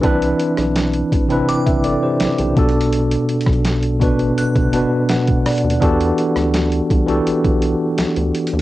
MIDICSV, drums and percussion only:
0, 0, Header, 1, 2, 480
1, 0, Start_track
1, 0, Key_signature, 1, "minor"
1, 0, Tempo, 722892
1, 23, Time_signature, 4, 2, 24, 8
1, 5722, End_track
2, 0, Start_track
2, 0, Title_t, "Drums"
2, 22, Note_on_c, 9, 42, 73
2, 23, Note_on_c, 9, 36, 120
2, 89, Note_off_c, 9, 36, 0
2, 89, Note_off_c, 9, 42, 0
2, 146, Note_on_c, 9, 42, 69
2, 213, Note_off_c, 9, 42, 0
2, 262, Note_on_c, 9, 42, 60
2, 328, Note_off_c, 9, 42, 0
2, 380, Note_on_c, 9, 37, 68
2, 385, Note_on_c, 9, 42, 55
2, 447, Note_off_c, 9, 37, 0
2, 452, Note_off_c, 9, 42, 0
2, 502, Note_on_c, 9, 42, 72
2, 505, Note_on_c, 9, 38, 109
2, 568, Note_off_c, 9, 42, 0
2, 571, Note_off_c, 9, 38, 0
2, 620, Note_on_c, 9, 42, 48
2, 687, Note_off_c, 9, 42, 0
2, 744, Note_on_c, 9, 36, 95
2, 747, Note_on_c, 9, 42, 71
2, 811, Note_off_c, 9, 36, 0
2, 813, Note_off_c, 9, 42, 0
2, 864, Note_on_c, 9, 42, 42
2, 931, Note_off_c, 9, 42, 0
2, 987, Note_on_c, 9, 42, 65
2, 1053, Note_off_c, 9, 42, 0
2, 1105, Note_on_c, 9, 36, 86
2, 1107, Note_on_c, 9, 42, 51
2, 1171, Note_off_c, 9, 36, 0
2, 1173, Note_off_c, 9, 42, 0
2, 1221, Note_on_c, 9, 42, 68
2, 1287, Note_off_c, 9, 42, 0
2, 1459, Note_on_c, 9, 42, 76
2, 1463, Note_on_c, 9, 38, 109
2, 1526, Note_off_c, 9, 42, 0
2, 1530, Note_off_c, 9, 38, 0
2, 1582, Note_on_c, 9, 42, 48
2, 1649, Note_off_c, 9, 42, 0
2, 1704, Note_on_c, 9, 36, 112
2, 1704, Note_on_c, 9, 42, 59
2, 1770, Note_off_c, 9, 36, 0
2, 1770, Note_off_c, 9, 42, 0
2, 1783, Note_on_c, 9, 42, 62
2, 1850, Note_off_c, 9, 42, 0
2, 1863, Note_on_c, 9, 42, 59
2, 1930, Note_off_c, 9, 42, 0
2, 1943, Note_on_c, 9, 42, 80
2, 2009, Note_off_c, 9, 42, 0
2, 2068, Note_on_c, 9, 42, 68
2, 2134, Note_off_c, 9, 42, 0
2, 2184, Note_on_c, 9, 42, 59
2, 2250, Note_off_c, 9, 42, 0
2, 2263, Note_on_c, 9, 42, 51
2, 2300, Note_on_c, 9, 37, 64
2, 2302, Note_on_c, 9, 36, 103
2, 2329, Note_off_c, 9, 42, 0
2, 2344, Note_on_c, 9, 42, 38
2, 2367, Note_off_c, 9, 37, 0
2, 2368, Note_off_c, 9, 36, 0
2, 2410, Note_off_c, 9, 42, 0
2, 2422, Note_on_c, 9, 42, 74
2, 2424, Note_on_c, 9, 38, 109
2, 2488, Note_off_c, 9, 42, 0
2, 2491, Note_off_c, 9, 38, 0
2, 2541, Note_on_c, 9, 42, 48
2, 2608, Note_off_c, 9, 42, 0
2, 2665, Note_on_c, 9, 36, 98
2, 2667, Note_on_c, 9, 42, 72
2, 2731, Note_off_c, 9, 36, 0
2, 2733, Note_off_c, 9, 42, 0
2, 2784, Note_on_c, 9, 42, 44
2, 2850, Note_off_c, 9, 42, 0
2, 2907, Note_on_c, 9, 42, 67
2, 2974, Note_off_c, 9, 42, 0
2, 3025, Note_on_c, 9, 36, 90
2, 3026, Note_on_c, 9, 42, 46
2, 3092, Note_off_c, 9, 36, 0
2, 3093, Note_off_c, 9, 42, 0
2, 3141, Note_on_c, 9, 42, 72
2, 3208, Note_off_c, 9, 42, 0
2, 3379, Note_on_c, 9, 42, 82
2, 3383, Note_on_c, 9, 38, 116
2, 3445, Note_off_c, 9, 42, 0
2, 3450, Note_off_c, 9, 38, 0
2, 3502, Note_on_c, 9, 42, 50
2, 3508, Note_on_c, 9, 36, 103
2, 3569, Note_off_c, 9, 42, 0
2, 3575, Note_off_c, 9, 36, 0
2, 3624, Note_on_c, 9, 42, 41
2, 3626, Note_on_c, 9, 37, 97
2, 3626, Note_on_c, 9, 46, 75
2, 3691, Note_off_c, 9, 42, 0
2, 3692, Note_off_c, 9, 37, 0
2, 3692, Note_off_c, 9, 46, 0
2, 3704, Note_on_c, 9, 42, 56
2, 3771, Note_off_c, 9, 42, 0
2, 3785, Note_on_c, 9, 42, 70
2, 3851, Note_off_c, 9, 42, 0
2, 3864, Note_on_c, 9, 36, 122
2, 3864, Note_on_c, 9, 42, 78
2, 3931, Note_off_c, 9, 36, 0
2, 3931, Note_off_c, 9, 42, 0
2, 3988, Note_on_c, 9, 42, 69
2, 4055, Note_off_c, 9, 42, 0
2, 4104, Note_on_c, 9, 42, 64
2, 4170, Note_off_c, 9, 42, 0
2, 4223, Note_on_c, 9, 37, 65
2, 4227, Note_on_c, 9, 42, 52
2, 4289, Note_off_c, 9, 37, 0
2, 4294, Note_off_c, 9, 42, 0
2, 4342, Note_on_c, 9, 42, 68
2, 4345, Note_on_c, 9, 38, 113
2, 4408, Note_off_c, 9, 42, 0
2, 4411, Note_off_c, 9, 38, 0
2, 4462, Note_on_c, 9, 42, 48
2, 4528, Note_off_c, 9, 42, 0
2, 4585, Note_on_c, 9, 36, 103
2, 4588, Note_on_c, 9, 42, 77
2, 4651, Note_off_c, 9, 36, 0
2, 4655, Note_off_c, 9, 42, 0
2, 4705, Note_on_c, 9, 42, 43
2, 4771, Note_off_c, 9, 42, 0
2, 4827, Note_on_c, 9, 42, 67
2, 4894, Note_off_c, 9, 42, 0
2, 4944, Note_on_c, 9, 36, 88
2, 4945, Note_on_c, 9, 42, 49
2, 5011, Note_off_c, 9, 36, 0
2, 5012, Note_off_c, 9, 42, 0
2, 5060, Note_on_c, 9, 42, 71
2, 5127, Note_off_c, 9, 42, 0
2, 5298, Note_on_c, 9, 42, 75
2, 5302, Note_on_c, 9, 38, 118
2, 5365, Note_off_c, 9, 42, 0
2, 5369, Note_off_c, 9, 38, 0
2, 5421, Note_on_c, 9, 42, 48
2, 5487, Note_off_c, 9, 42, 0
2, 5542, Note_on_c, 9, 42, 59
2, 5608, Note_off_c, 9, 42, 0
2, 5623, Note_on_c, 9, 42, 58
2, 5690, Note_off_c, 9, 42, 0
2, 5722, End_track
0, 0, End_of_file